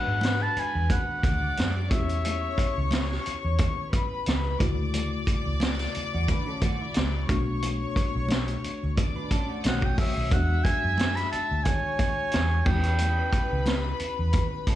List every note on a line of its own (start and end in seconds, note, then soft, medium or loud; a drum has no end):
0.00 1.87 G#3 medium
0.00 1.87 B3 medium
0.00 1.88 D4 medium
0.00 1.91 F#4 medium
0.00 1.20 B4 medium
0.00 0.44 F#5 loud
0.00 1.19 B5 medium
0.07 0.47 G#2 medium
0.21 snare loud
0.21 closed hi-hat medium
0.21 high conga medium
0.42 0.61 A5 loud
0.56 0.91 G#5 loud
0.56 muted fingered electric bass stroke soft
0.56 closed hi-hat medium
0.75 0.87 E2 medium
0.90 1.76 F#5 loud
0.90 kick medium
0.90 closed hi-hat medium
0.90 muted conga medium
0.90 low conga medium
1.23 1.51 D2 medium
1.23 1.90 D5 medium
1.23 1.89 D6 medium
1.23 kick medium
1.23 closed hi-hat medium
1.23 muted conga soft
1.23 low conga medium
1.57 1.92 F#2 medium
1.57 snare loud
1.57 closed hi-hat loud
1.57 high conga medium
1.89 2.46 E2 loud
1.89 4.56 B3 medium
1.89 4.57 C#4 medium
1.89 4.58 E4 medium
1.89 3.89 C#5 medium
1.89 2.89 E5 medium
1.89 3.88 C#6 loud
1.89 kick loud
1.89 closed hi-hat medium
1.89 high conga medium
1.94 1.99 F#4 medium
2.00 4.61 G4 medium
2.09 closed hi-hat medium
2.25 closed hi-hat loud
2.25 muted conga medium
2.58 kick medium
2.58 closed hi-hat medium
2.58 muted conga soft
2.78 3.17 C#2 medium
2.91 snare loud
2.91 closed hi-hat medium
2.91 high conga medium
3.12 snare soft
3.26 muted fingered electric bass stroke soft
3.26 closed hi-hat medium
3.45 3.57 E2 medium
3.58 kick medium
3.58 closed hi-hat medium
3.58 muted conga soft
3.58 low conga medium
3.93 4.59 B4 medium
3.93 4.60 B5 medium
3.93 kick medium
3.93 closed hi-hat medium
3.93 muted conga soft
4.26 4.54 C#2 medium
4.26 snare loud
4.26 closed hi-hat medium
4.26 high conga medium
4.59 5.15 D2 loud
4.59 7.25 C#3 medium
4.59 7.25 A3 medium
4.59 7.26 E4 medium
4.59 7.26 F#4 medium
4.59 7.26 D5 loud
4.59 7.26 D6 loud
4.59 kick loud
4.59 closed hi-hat medium
4.59 high conga medium
4.94 closed hi-hat loud
4.94 muted conga medium
5.27 kick medium
5.27 closed hi-hat medium
5.27 muted conga soft
5.46 5.86 C#2 medium
5.60 snare loud
5.60 closed hi-hat medium
5.60 high conga medium
5.79 snare soft
5.79 closed hi-hat medium
5.95 muted fingered electric bass stroke soft
5.95 closed hi-hat medium
6.13 6.27 E2 medium
6.13 6.28 F#4 medium
6.13 6.28 D5 medium
6.28 6.46 D4 medium
6.28 6.47 B4 medium
6.28 kick medium
6.28 closed hi-hat medium
6.28 muted conga medium
6.28 low conga medium
6.47 6.62 C#4 medium
6.47 6.62 A4 medium
6.61 6.81 A3 medium
6.61 6.80 F#4 medium
6.61 kick medium
6.61 closed hi-hat medium
6.61 muted conga soft
6.61 low conga medium
6.81 7.28 E4 medium
6.94 7.24 C#2 loud
6.94 snare loud
6.94 closed hi-hat medium
6.94 high conga medium
7.27 7.84 B1 loud
7.27 9.60 A3 medium
7.27 9.60 B3 medium
7.27 9.61 D4 medium
7.27 9.61 F#4 medium
7.27 8.94 C#5 medium
7.27 8.94 C#6 loud
7.27 kick loud
7.27 closed hi-hat medium
7.27 high conga medium
7.62 closed hi-hat loud
7.62 muted conga medium
7.96 kick medium
7.96 closed hi-hat medium
8.15 8.55 B1 medium
8.29 snare loud
8.29 closed hi-hat medium
8.29 high conga medium
8.48 closed hi-hat medium
8.64 muted fingered electric bass stroke soft
8.64 closed hi-hat medium
8.83 8.95 D2 loud
8.97 9.64 D5 medium
8.97 9.64 D6 medium
8.97 kick medium
8.97 closed hi-hat medium
8.97 muted conga soft
8.97 low conga medium
9.16 9.30 D4 medium
9.16 9.30 B4 medium
9.31 9.48 C#4 medium
9.31 9.48 A4 medium
9.31 kick medium
9.31 closed hi-hat medium
9.31 muted conga soft
9.49 9.82 A3 medium
9.49 9.81 F#4 medium
9.64 9.92 B1 loud
9.64 10.32 D#3 medium
9.64 10.32 A3 medium
9.64 10.32 C#4 medium
9.64 10.32 F#4 medium
9.64 10.30 C#5 medium
9.64 9.87 F#5 medium
9.64 10.31 D#6 medium
9.64 snare loud
9.64 closed hi-hat medium
9.64 high conga medium
9.82 9.98 G5 medium
9.82 kick medium
9.98 10.34 E5 medium
9.98 kick loud
9.98 open hi-hat medium
9.98 high conga medium
10.17 10.30 B1 medium
10.31 10.59 E2 loud
10.31 10.39 F#3 medium
10.31 12.63 B3 medium
10.31 12.63 D4 medium
10.31 12.64 F#4 medium
10.31 11.64 E5 medium
10.31 10.66 F#5 loud
10.31 11.64 E6 medium
10.31 kick loud
10.31 closed hi-hat loud
10.31 muted conga medium
10.37 12.65 G#3 medium
10.64 11.17 G#5 loud
10.64 kick medium
10.64 closed hi-hat medium
10.64 muted conga soft
10.84 11.24 F#2 medium
10.98 snare loud
10.98 closed hi-hat medium
10.98 high conga medium
11.16 11.31 B5 loud
11.16 snare soft
11.16 closed hi-hat medium
11.31 11.65 A5 loud
11.31 muted fingered electric bass stroke soft
11.31 closed hi-hat medium
11.51 11.63 D2 loud
11.64 12.65 C#5 medium
11.64 12.67 G#5 loud
11.64 12.65 C#6 medium
11.64 kick medium
11.64 closed hi-hat medium
11.64 muted conga soft
11.64 low conga medium
11.99 kick medium
11.99 closed hi-hat medium
11.99 muted conga medium
11.99 low conga medium
12.32 12.61 E2 medium
12.32 snare loud
12.32 closed hi-hat medium
12.32 high conga medium
12.65 13.21 E2 loud
12.65 14.75 B3 medium
12.65 14.75 C#4 medium
12.65 14.75 E4 medium
12.65 12.75 F#4 medium
12.65 14.75 B4 medium
12.65 13.67 G5 medium
12.65 14.75 B5 loud
12.65 kick loud
12.65 crash medium
12.65 high conga medium
12.75 14.75 G4 medium
12.83 closed hi-hat medium
12.99 closed hi-hat loud
12.99 muted conga medium
13.33 kick medium
13.33 closed hi-hat medium
13.33 muted conga soft
13.52 13.92 C#2 medium
13.66 snare loud
13.66 closed hi-hat medium
13.66 high conga medium
14.00 muted fingered electric bass stroke soft
14.00 closed hi-hat medium
14.19 14.31 E2 medium
14.33 kick medium
14.33 closed hi-hat medium
14.33 muted conga soft
14.33 low conga medium
14.67 14.75 C#4 medium
14.67 14.75 A4 medium
14.67 kick medium
14.67 closed hi-hat medium
14.67 muted conga medium